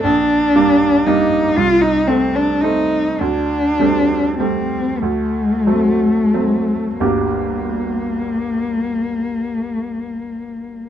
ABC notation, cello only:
X:1
M:6/8
L:1/16
Q:3/8=32
K:Gm
V:1 name="Cello"
D4 E2 F E C D E2 | D4 C2 A,6 | B,12 |]